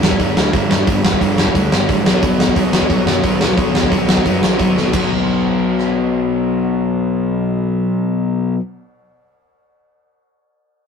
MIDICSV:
0, 0, Header, 1, 4, 480
1, 0, Start_track
1, 0, Key_signature, 2, "minor"
1, 0, Tempo, 339367
1, 1233, Time_signature, 4, 2, 24, 8
1, 15375, End_track
2, 0, Start_track
2, 0, Title_t, "Overdriven electric guitar"
2, 0, Program_c, 0, 29
2, 32, Note_on_c, 0, 55, 96
2, 43, Note_on_c, 0, 50, 75
2, 56, Note_on_c, 0, 43, 76
2, 253, Note_off_c, 0, 43, 0
2, 260, Note_off_c, 0, 50, 0
2, 270, Note_on_c, 0, 43, 93
2, 272, Note_off_c, 0, 55, 0
2, 277, Note_on_c, 0, 50, 99
2, 289, Note_on_c, 0, 55, 95
2, 725, Note_off_c, 0, 43, 0
2, 741, Note_off_c, 0, 50, 0
2, 742, Note_on_c, 0, 43, 92
2, 749, Note_off_c, 0, 55, 0
2, 758, Note_on_c, 0, 50, 95
2, 766, Note_on_c, 0, 55, 85
2, 961, Note_off_c, 0, 55, 0
2, 974, Note_off_c, 0, 50, 0
2, 978, Note_on_c, 0, 55, 88
2, 984, Note_off_c, 0, 43, 0
2, 991, Note_on_c, 0, 50, 72
2, 1001, Note_on_c, 0, 43, 67
2, 1207, Note_off_c, 0, 43, 0
2, 1218, Note_off_c, 0, 50, 0
2, 1224, Note_on_c, 0, 43, 99
2, 1229, Note_off_c, 0, 55, 0
2, 1235, Note_on_c, 0, 50, 97
2, 1246, Note_on_c, 0, 55, 99
2, 1685, Note_off_c, 0, 43, 0
2, 1694, Note_off_c, 0, 50, 0
2, 1702, Note_on_c, 0, 43, 80
2, 1706, Note_off_c, 0, 55, 0
2, 1711, Note_on_c, 0, 50, 80
2, 1723, Note_on_c, 0, 55, 89
2, 1932, Note_off_c, 0, 55, 0
2, 1943, Note_off_c, 0, 50, 0
2, 1948, Note_on_c, 0, 55, 89
2, 1949, Note_off_c, 0, 43, 0
2, 1960, Note_on_c, 0, 50, 92
2, 1966, Note_on_c, 0, 43, 75
2, 2155, Note_off_c, 0, 43, 0
2, 2162, Note_off_c, 0, 50, 0
2, 2172, Note_on_c, 0, 43, 79
2, 2177, Note_off_c, 0, 55, 0
2, 2179, Note_on_c, 0, 50, 82
2, 2194, Note_on_c, 0, 55, 103
2, 2638, Note_off_c, 0, 43, 0
2, 2651, Note_off_c, 0, 50, 0
2, 2655, Note_on_c, 0, 43, 86
2, 2656, Note_off_c, 0, 55, 0
2, 2668, Note_on_c, 0, 50, 88
2, 2673, Note_on_c, 0, 55, 101
2, 2886, Note_off_c, 0, 43, 0
2, 2889, Note_off_c, 0, 50, 0
2, 2894, Note_off_c, 0, 55, 0
2, 2894, Note_on_c, 0, 47, 79
2, 2900, Note_on_c, 0, 54, 88
2, 2916, Note_on_c, 0, 59, 95
2, 3133, Note_off_c, 0, 59, 0
2, 3139, Note_on_c, 0, 59, 103
2, 3144, Note_off_c, 0, 54, 0
2, 3150, Note_on_c, 0, 54, 87
2, 3155, Note_off_c, 0, 47, 0
2, 3160, Note_on_c, 0, 47, 80
2, 3622, Note_off_c, 0, 59, 0
2, 3628, Note_on_c, 0, 59, 78
2, 3630, Note_off_c, 0, 54, 0
2, 3636, Note_on_c, 0, 54, 77
2, 3646, Note_off_c, 0, 47, 0
2, 3652, Note_on_c, 0, 47, 66
2, 3851, Note_off_c, 0, 47, 0
2, 3856, Note_on_c, 0, 47, 86
2, 3861, Note_off_c, 0, 54, 0
2, 3867, Note_on_c, 0, 54, 92
2, 3868, Note_off_c, 0, 59, 0
2, 3874, Note_on_c, 0, 59, 95
2, 4096, Note_off_c, 0, 59, 0
2, 4101, Note_on_c, 0, 59, 96
2, 4107, Note_off_c, 0, 54, 0
2, 4113, Note_on_c, 0, 54, 86
2, 4114, Note_off_c, 0, 47, 0
2, 4120, Note_on_c, 0, 47, 72
2, 4574, Note_off_c, 0, 59, 0
2, 4580, Note_on_c, 0, 59, 90
2, 4585, Note_off_c, 0, 54, 0
2, 4590, Note_off_c, 0, 47, 0
2, 4591, Note_on_c, 0, 54, 79
2, 4596, Note_on_c, 0, 47, 74
2, 4808, Note_off_c, 0, 47, 0
2, 4814, Note_on_c, 0, 47, 73
2, 4816, Note_off_c, 0, 54, 0
2, 4822, Note_on_c, 0, 54, 69
2, 4823, Note_off_c, 0, 59, 0
2, 4829, Note_on_c, 0, 59, 77
2, 5030, Note_off_c, 0, 59, 0
2, 5044, Note_off_c, 0, 54, 0
2, 5047, Note_on_c, 0, 59, 95
2, 5052, Note_off_c, 0, 47, 0
2, 5061, Note_on_c, 0, 54, 82
2, 5068, Note_on_c, 0, 47, 77
2, 5512, Note_off_c, 0, 59, 0
2, 5517, Note_off_c, 0, 54, 0
2, 5529, Note_off_c, 0, 47, 0
2, 5529, Note_on_c, 0, 59, 82
2, 5534, Note_on_c, 0, 54, 66
2, 5546, Note_on_c, 0, 47, 60
2, 5750, Note_off_c, 0, 47, 0
2, 5760, Note_off_c, 0, 54, 0
2, 5767, Note_on_c, 0, 47, 84
2, 5769, Note_off_c, 0, 59, 0
2, 5777, Note_on_c, 0, 54, 88
2, 5786, Note_on_c, 0, 59, 83
2, 5998, Note_off_c, 0, 59, 0
2, 6007, Note_off_c, 0, 54, 0
2, 6015, Note_on_c, 0, 59, 90
2, 6017, Note_off_c, 0, 47, 0
2, 6024, Note_on_c, 0, 54, 78
2, 6034, Note_on_c, 0, 47, 66
2, 6470, Note_off_c, 0, 59, 0
2, 6475, Note_off_c, 0, 54, 0
2, 6487, Note_on_c, 0, 59, 77
2, 6489, Note_off_c, 0, 47, 0
2, 6492, Note_on_c, 0, 54, 80
2, 6506, Note_on_c, 0, 47, 73
2, 6716, Note_off_c, 0, 47, 0
2, 6723, Note_off_c, 0, 54, 0
2, 6733, Note_on_c, 0, 47, 62
2, 6735, Note_off_c, 0, 59, 0
2, 6740, Note_on_c, 0, 54, 65
2, 6752, Note_on_c, 0, 59, 83
2, 6953, Note_off_c, 0, 47, 0
2, 6968, Note_off_c, 0, 54, 0
2, 6970, Note_on_c, 0, 47, 79
2, 6974, Note_off_c, 0, 59, 0
2, 7004, Note_on_c, 0, 54, 99
2, 7025, Note_on_c, 0, 59, 85
2, 12117, Note_off_c, 0, 47, 0
2, 12151, Note_off_c, 0, 54, 0
2, 12171, Note_off_c, 0, 59, 0
2, 15375, End_track
3, 0, Start_track
3, 0, Title_t, "Picked electric bass"
3, 0, Program_c, 1, 34
3, 49, Note_on_c, 1, 31, 81
3, 226, Note_off_c, 1, 31, 0
3, 283, Note_on_c, 1, 31, 87
3, 463, Note_off_c, 1, 31, 0
3, 522, Note_on_c, 1, 38, 88
3, 701, Note_off_c, 1, 38, 0
3, 758, Note_on_c, 1, 31, 82
3, 938, Note_off_c, 1, 31, 0
3, 994, Note_on_c, 1, 31, 83
3, 1175, Note_off_c, 1, 31, 0
3, 1233, Note_on_c, 1, 31, 90
3, 1414, Note_off_c, 1, 31, 0
3, 1462, Note_on_c, 1, 31, 90
3, 1647, Note_off_c, 1, 31, 0
3, 1718, Note_on_c, 1, 31, 92
3, 2077, Note_off_c, 1, 31, 0
3, 2202, Note_on_c, 1, 38, 87
3, 2378, Note_off_c, 1, 38, 0
3, 2421, Note_on_c, 1, 31, 86
3, 2605, Note_off_c, 1, 31, 0
3, 2674, Note_on_c, 1, 33, 92
3, 2853, Note_off_c, 1, 33, 0
3, 2902, Note_on_c, 1, 35, 88
3, 3085, Note_off_c, 1, 35, 0
3, 3154, Note_on_c, 1, 35, 90
3, 3332, Note_off_c, 1, 35, 0
3, 3373, Note_on_c, 1, 35, 88
3, 3559, Note_off_c, 1, 35, 0
3, 3626, Note_on_c, 1, 35, 90
3, 3807, Note_off_c, 1, 35, 0
3, 3851, Note_on_c, 1, 35, 86
3, 4037, Note_off_c, 1, 35, 0
3, 4103, Note_on_c, 1, 35, 86
3, 4285, Note_off_c, 1, 35, 0
3, 4317, Note_on_c, 1, 42, 85
3, 4509, Note_off_c, 1, 42, 0
3, 4581, Note_on_c, 1, 35, 87
3, 4764, Note_off_c, 1, 35, 0
3, 4814, Note_on_c, 1, 35, 75
3, 4999, Note_off_c, 1, 35, 0
3, 5063, Note_on_c, 1, 35, 87
3, 5245, Note_off_c, 1, 35, 0
3, 5298, Note_on_c, 1, 35, 85
3, 5481, Note_off_c, 1, 35, 0
3, 5543, Note_on_c, 1, 35, 93
3, 5907, Note_off_c, 1, 35, 0
3, 6026, Note_on_c, 1, 42, 74
3, 6207, Note_off_c, 1, 42, 0
3, 6255, Note_on_c, 1, 35, 81
3, 6440, Note_off_c, 1, 35, 0
3, 6502, Note_on_c, 1, 35, 85
3, 6685, Note_off_c, 1, 35, 0
3, 6748, Note_on_c, 1, 35, 83
3, 6929, Note_off_c, 1, 35, 0
3, 6983, Note_on_c, 1, 35, 82
3, 12072, Note_off_c, 1, 35, 0
3, 15375, End_track
4, 0, Start_track
4, 0, Title_t, "Drums"
4, 46, Note_on_c, 9, 38, 113
4, 160, Note_on_c, 9, 36, 79
4, 187, Note_off_c, 9, 38, 0
4, 278, Note_on_c, 9, 46, 50
4, 279, Note_off_c, 9, 36, 0
4, 279, Note_on_c, 9, 36, 89
4, 420, Note_off_c, 9, 36, 0
4, 420, Note_off_c, 9, 46, 0
4, 524, Note_on_c, 9, 38, 105
4, 666, Note_off_c, 9, 38, 0
4, 753, Note_on_c, 9, 46, 48
4, 755, Note_on_c, 9, 36, 109
4, 894, Note_off_c, 9, 46, 0
4, 897, Note_off_c, 9, 36, 0
4, 1002, Note_on_c, 9, 38, 98
4, 1144, Note_off_c, 9, 38, 0
4, 1235, Note_on_c, 9, 36, 110
4, 1236, Note_on_c, 9, 46, 54
4, 1377, Note_off_c, 9, 36, 0
4, 1377, Note_off_c, 9, 46, 0
4, 1479, Note_on_c, 9, 38, 117
4, 1596, Note_on_c, 9, 36, 74
4, 1620, Note_off_c, 9, 38, 0
4, 1715, Note_off_c, 9, 36, 0
4, 1715, Note_on_c, 9, 36, 81
4, 1720, Note_on_c, 9, 46, 58
4, 1857, Note_off_c, 9, 36, 0
4, 1861, Note_off_c, 9, 46, 0
4, 1954, Note_on_c, 9, 38, 108
4, 2075, Note_on_c, 9, 36, 68
4, 2096, Note_off_c, 9, 38, 0
4, 2196, Note_off_c, 9, 36, 0
4, 2196, Note_on_c, 9, 36, 93
4, 2198, Note_on_c, 9, 46, 54
4, 2337, Note_off_c, 9, 36, 0
4, 2339, Note_off_c, 9, 46, 0
4, 2437, Note_on_c, 9, 38, 108
4, 2578, Note_off_c, 9, 38, 0
4, 2672, Note_on_c, 9, 46, 52
4, 2673, Note_on_c, 9, 36, 91
4, 2814, Note_off_c, 9, 36, 0
4, 2814, Note_off_c, 9, 46, 0
4, 2919, Note_on_c, 9, 38, 106
4, 3061, Note_off_c, 9, 38, 0
4, 3150, Note_on_c, 9, 36, 106
4, 3151, Note_on_c, 9, 46, 54
4, 3292, Note_off_c, 9, 36, 0
4, 3293, Note_off_c, 9, 46, 0
4, 3395, Note_on_c, 9, 38, 107
4, 3507, Note_on_c, 9, 36, 76
4, 3536, Note_off_c, 9, 38, 0
4, 3622, Note_on_c, 9, 46, 52
4, 3625, Note_off_c, 9, 36, 0
4, 3625, Note_on_c, 9, 36, 89
4, 3764, Note_off_c, 9, 46, 0
4, 3766, Note_off_c, 9, 36, 0
4, 3865, Note_on_c, 9, 38, 111
4, 3983, Note_on_c, 9, 36, 72
4, 4007, Note_off_c, 9, 38, 0
4, 4100, Note_on_c, 9, 46, 46
4, 4102, Note_off_c, 9, 36, 0
4, 4102, Note_on_c, 9, 36, 88
4, 4241, Note_off_c, 9, 46, 0
4, 4243, Note_off_c, 9, 36, 0
4, 4344, Note_on_c, 9, 38, 93
4, 4485, Note_off_c, 9, 38, 0
4, 4574, Note_on_c, 9, 46, 50
4, 4578, Note_on_c, 9, 36, 97
4, 4716, Note_off_c, 9, 46, 0
4, 4720, Note_off_c, 9, 36, 0
4, 4822, Note_on_c, 9, 38, 101
4, 4964, Note_off_c, 9, 38, 0
4, 5057, Note_on_c, 9, 36, 105
4, 5057, Note_on_c, 9, 46, 53
4, 5198, Note_off_c, 9, 46, 0
4, 5199, Note_off_c, 9, 36, 0
4, 5305, Note_on_c, 9, 38, 102
4, 5420, Note_on_c, 9, 36, 80
4, 5446, Note_off_c, 9, 38, 0
4, 5541, Note_off_c, 9, 36, 0
4, 5541, Note_on_c, 9, 36, 87
4, 5542, Note_on_c, 9, 46, 54
4, 5682, Note_off_c, 9, 36, 0
4, 5684, Note_off_c, 9, 46, 0
4, 5781, Note_on_c, 9, 38, 113
4, 5900, Note_on_c, 9, 36, 77
4, 5923, Note_off_c, 9, 38, 0
4, 6020, Note_off_c, 9, 36, 0
4, 6020, Note_on_c, 9, 36, 80
4, 6023, Note_on_c, 9, 46, 54
4, 6162, Note_off_c, 9, 36, 0
4, 6164, Note_off_c, 9, 46, 0
4, 6265, Note_on_c, 9, 38, 94
4, 6406, Note_off_c, 9, 38, 0
4, 6497, Note_on_c, 9, 46, 51
4, 6499, Note_on_c, 9, 36, 95
4, 6638, Note_off_c, 9, 46, 0
4, 6641, Note_off_c, 9, 36, 0
4, 6749, Note_on_c, 9, 38, 57
4, 6891, Note_off_c, 9, 38, 0
4, 6978, Note_on_c, 9, 36, 95
4, 6978, Note_on_c, 9, 49, 81
4, 7120, Note_off_c, 9, 36, 0
4, 7120, Note_off_c, 9, 49, 0
4, 8180, Note_on_c, 9, 37, 48
4, 8322, Note_off_c, 9, 37, 0
4, 15375, End_track
0, 0, End_of_file